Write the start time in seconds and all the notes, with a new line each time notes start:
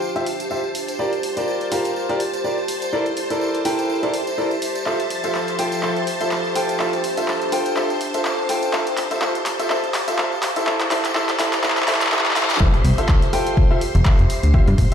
Already playing: D4 F4 G4 C5 E5 G5 A5
0.02 tambourine
0.16 F4 G4 C5 E5, closed hi-hat, tambourine
0.26 open hi-hat
0.40 closed hi-hat, tambourine
0.51 F4 G4 C5 E5, tambourine
0.64 tambourine
0.75 open hi-hat
0.88 closed hi-hat, tambourine
0.99 F4 G4 A#4 D5, tambourine
1.13 closed hi-hat, tambourine
1.23 open hi-hat
1.37 F4 G4 A#4 D5, closed hi-hat, tambourine
1.48 tambourine
1.60 closed hi-hat, tambourine
1.68 F4 G4 A#4 F5, open hi-hat
1.85 closed hi-hat, tambourine
1.96 tambourine
2.09 F4 G4 A#4 D5, closed hi-hat, tambourine
2.20 open hi-hat
2.34 closed hi-hat, tambourine
2.44 F4 G4 A#4 D5, tambourine
2.58 tambourine
2.68 open hi-hat
2.82 closed hi-hat, tambourine
2.88 E5
2.92 E4 A4 A#4 D5, tambourine
3.06 closed hi-hat, tambourine
3.17 open hi-hat
3.30 E4 A4 A#4 D5, closed hi-hat, tambourine
3.41 tambourine
3.55 closed hi-hat
3.65 E4 A4 A#4 G5, open hi-hat
3.79 closed hi-hat, tambourine
3.89 tambourine
4.03 E4 A4 A#4 D5, closed hi-hat, tambourine
4.14 open hi-hat
4.27 closed hi-hat, tambourine
4.38 E4 A4 A#4 D5, tambourine
4.51 closed hi-hat, tambourine
4.62 open hi-hat
4.75 closed hi-hat, tambourine
4.86 F3 F4 A4 C5 E5, clap, tambourine, riser
5.00 closed hi-hat, tambourine
5.10 open hi-hat
5.23 F4 A4 C5 E5, closed hi-hat, tambourine
5.35 clap, tambourine
5.48 closed hi-hat, tambourine
5.59 F4 A4 C5 G5, open hi-hat
5.72 closed hi-hat, tambourine
5.83 F4 A4 C5 E5, clap, tambourine
5.96 closed hi-hat, tambourine
6.07 open hi-hat
6.21 F4 A4 C5 E5, closed hi-hat, tambourine
6.31 clap, tambourine
6.45 tambourine
6.56 D4 F4 A4 C5 G5, open hi-hat
6.69 closed hi-hat, tambourine
6.80 F4 A4 C5 E5, clap, tambourine
6.93 closed hi-hat, tambourine
7.04 open hi-hat
7.17 F4 A4 C5 E5, closed hi-hat, tambourine
7.28 clap, tambourine
7.42 closed hi-hat, tambourine
7.52 F4 A4 C5 G5, open hi-hat
7.66 closed hi-hat, tambourine
7.76 F4 A4 C5 E5, clap, tambourine
7.90 closed hi-hat, tambourine
8.01 open hi-hat
8.14 F4 A4 C5 E5, closed hi-hat, tambourine
8.25 clap, tambourine
8.38 tambourine
8.49 F4 A4 C5 G5, open hi-hat
8.62 closed hi-hat, tambourine
8.73 F4 A4 C5 E5, clap, tambourine
8.87 closed hi-hat, tambourine
8.97 F5, clap, open hi-hat
9.11 F4 A4 C5 E5, closed hi-hat, tambourine
9.21 F4 A4 C5 E5, clap, tambourine
9.35 closed hi-hat, tambourine
9.46 clap, open hi-hat
9.59 F4 A4 C5 E5, closed hi-hat, tambourine
9.70 F4 A4 C5 E5, clap, tambourine
9.83 closed hi-hat, tambourine
9.94 clap, open hi-hat
10.08 F4 A4 C5 E5, closed hi-hat, tambourine
10.18 F4 A4 C5 E5, clap, tambourine
10.32 tambourine
10.42 G4, clap, open hi-hat
10.56 E4 A4 C5 E5, closed hi-hat, tambourine
10.66 E4 A4 C5 E5, clap, tambourine
10.80 clap, closed hi-hat, tambourine
10.91 E4 A4 C5 E5, clap, open hi-hat
11.00 E5
11.05 clap, closed hi-hat, tambourine
11.15 E4 A4 C5 E5, clap, tambourine
11.29 clap, closed hi-hat, tambourine
11.39 E4 A4 C5 E5, clap, open hi-hat
11.53 clap, closed hi-hat, tambourine
11.63 E4 A4 C5 E5, clap, tambourine, reverse cymbal
11.70 clap
11.77 clap, closed hi-hat, tambourine
11.82 clap
11.88 E4 A4 C5 E5, clap, open hi-hat
11.95 clap
12.01 clap, closed hi-hat, tambourine
12.07 clap
12.12 E4 A4 C5 E5, clap, tambourine
12.19 clap
12.26 clap, closed hi-hat, tambourine
12.31 clap
12.36 E4 A4 C5 E5, clap, open hi-hat
12.43 clap
12.50 clap, closed hi-hat, tambourine
12.55 clap
12.60 F1 F4 A4 C5 E5 C6, kick, impact
12.74 cross-stick, closed hi-hat
12.85 C2, open hi-hat
12.98 F4 A4 C5 E5, closed hi-hat
13.09 kick, clap
13.22 closed hi-hat
13.33 F4 A4 C5 G5, cross-stick, open hi-hat
13.47 closed hi-hat
13.57 kick
13.71 F4 A4 C5 E5, cross-stick
13.81 open hi-hat
13.95 F1, closed hi-hat
14.05 F4 A4 C5 E5, kick, clap
14.19 F1, closed hi-hat
14.30 open hi-hat
14.42 D2 C5, closed hi-hat
14.54 F4 G4 C5 E5, kick
14.68 G2, cross-stick, closed hi-hat
14.78 A1, kick, open hi-hat